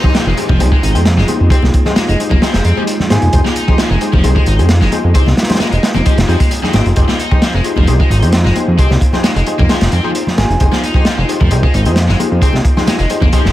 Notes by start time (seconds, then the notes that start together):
Already playing: G#3 D#4 F4, downlifter
0.03 D#4 G4 G#4 C5, kick, low conga
0.15 F3, snare, closed hi-hat, high conga
0.27 F1 G#3
0.37 D#4 G4 G#4 C5, closed hi-hat
0.49 F1 F3, kick, high conga, low conga
0.60 C2 D#4 G4 G#4 C5, closed hi-hat
0.72 G#3, kick
0.83 G#1 D#4, closed hi-hat
0.94 F2 D#4 G4 G#4 C5, closed hi-hat, high conga
1.05 snare, closed hi-hat
1.17 F1 G#3, snare, low conga
1.28 D#4 G4 G#4 C5, closed hi-hat, high conga
1.40 F2
1.50 C2 C4 D#4 G4 G#4 C5, kick, closed hi-hat
1.63 C2, snare, high conga
1.74 kick, closed hi-hat
1.85 D#4 G4 G#4 C5, snare, low conga
1.96 G#3, snare, closed hi-hat, high conga
2.08 F1 G#3 D#5, closed hi-hat
2.20 D#4 G4 G#4 C5, closed hi-hat
2.31 F1 A#3, kick, high conga, low conga
2.42 F3 D#4 G4 G#4 C5, snare, closed hi-hat
2.54 F1, snare, closed hi-hat
2.64 F2 C4, closed hi-hat
2.77 F3 D#4 G4 G#4 C5, high conga
2.87 closed hi-hat
3.00 snare, low conga
3.10 G#1 D#4 G4 G#4 C5 G#5, snare, closed hi-hat, high conga
3.22 F1 G#5, closed hi-hat
3.33 F1 D#4 G4 G#4 C5, kick, closed hi-hat
3.45 F3, snare, high conga
3.56 D#4, closed hi-hat
3.68 D#4 G4 G#4 C5, kick, low conga
3.78 F3, snare, closed hi-hat, high conga
3.90 F1 G#3
4.01 D#4 G4 G#4 C5, closed hi-hat
4.13 F1 F3, kick, high conga, low conga
4.24 C2 D#4 G4 G#4 C5, closed hi-hat
4.36 G#3, kick
4.46 G#1 D#4, closed hi-hat
4.59 F2 D#4 G4 G#4 C5, closed hi-hat, high conga
4.69 snare, closed hi-hat
4.81 F1 G#3, snare, low conga
4.92 D#4 G4 G#4 C5, closed hi-hat, high conga
5.04 F2
5.15 C2 C4 D#4 G4 G#4 C5, kick, closed hi-hat
5.26 C2, snare, high conga
5.37 snare, closed hi-hat
5.43 snare, closed hi-hat
5.49 D#4 G4 G#4 C5, snare, closed hi-hat, low conga
5.55 snare, closed hi-hat
5.60 G#3, snare, closed hi-hat, high conga
5.72 F1 G#3 D#5, closed hi-hat
5.83 D#4 G4 G#4 C5, snare, closed hi-hat
5.94 F1 A#3, closed hi-hat, high conga, low conga
6.05 F3 D#4 G4 G#4 C5, kick, closed hi-hat
6.18 F1, snare, closed hi-hat
6.28 F2 F3 D#4 G4 G#4 C5, closed hi-hat
6.40 G#3, kick, closed hi-hat, high conga
6.51 closed hi-hat
6.63 D#3 D#4 G4 G#4 D#5, snare, low conga
6.73 G#1 C4 D#4 G4 G#4 C5, snare, closed hi-hat, high conga
6.86 F1, closed hi-hat
6.96 F1 D#4 G4 G#4 C5, kick, closed hi-hat
7.08 F3, snare, high conga
7.19 D#4, closed hi-hat
7.31 D#4 G4 G#4 C5, kick, low conga
7.42 F3, snare, closed hi-hat, high conga
7.54 F1 G#3
7.64 D#4 G4 G#4 C5, closed hi-hat
7.76 F1 F3, kick, high conga, low conga
7.87 C2 D#4 G4 G#4 C5, closed hi-hat
8.00 G#3, kick
8.10 G#1 D#4, closed hi-hat
8.22 F2 D#4 G4 G#4 C5, closed hi-hat, high conga
8.32 snare, closed hi-hat
8.45 F1 G#3, snare, low conga
8.56 D#4 G4 G#4 C5, closed hi-hat, high conga
8.68 F2
8.79 C2 C4 D#4 G4 G#4 C5, kick, closed hi-hat
8.90 C2, snare, high conga
9.01 kick, closed hi-hat
9.13 D#4 G4 G#4 C5, snare, low conga
9.24 G#3, snare, closed hi-hat, high conga
9.36 F1 G#3 D#5, closed hi-hat
9.46 D#4 G4 G#4 C5, closed hi-hat
9.59 F1 A#3, kick, high conga, low conga
9.69 F3 D#4 G4 G#4 C5, snare, closed hi-hat
9.81 F1, snare, closed hi-hat
9.92 F2 C4, closed hi-hat
10.04 F3 D#4 G4 G#4 C5, high conga
10.15 closed hi-hat
10.27 snare, low conga
10.38 G#1 D#4 G4 G#4 C5 G#5, snare, closed hi-hat, high conga
10.50 F1 G#5, closed hi-hat
10.60 F1 D#4 G4 G#4 C5, kick, closed hi-hat
10.72 F3, snare, high conga
10.83 D#4, closed hi-hat
10.94 D#4 G4 G#4 C5, kick, low conga
11.05 F3, snare, closed hi-hat, high conga
11.18 F1 G#3
11.29 D#4 G4 G#4 C5, closed hi-hat
11.41 F1 F3, kick, high conga, low conga
11.51 C2 D#4 G4 G#4 C5, closed hi-hat
11.63 G#3, kick
11.74 G#1 D#4, closed hi-hat
11.85 F2 D#4 G4 G#4 C5, closed hi-hat, high conga
11.96 snare, closed hi-hat
12.08 F1 G#3, snare, low conga
12.20 D#4 G4 G#4 C5, closed hi-hat, high conga
12.31 F2
12.42 C2 C4 D#4 G4 G#4 C5, kick, closed hi-hat
12.53 C2, snare, high conga
12.65 kick, closed hi-hat
12.77 D#4 G4 G#4 C5, snare, low conga
12.86 G#3, snare, closed hi-hat, high conga
12.99 F1 G#3 D#5, closed hi-hat
13.10 D#4 G4 G#4 C5, closed hi-hat
13.21 F1 A#3, kick, high conga, low conga
13.33 F3 D#4 G4 G#4 C5, kick, closed hi-hat
13.45 F1, snare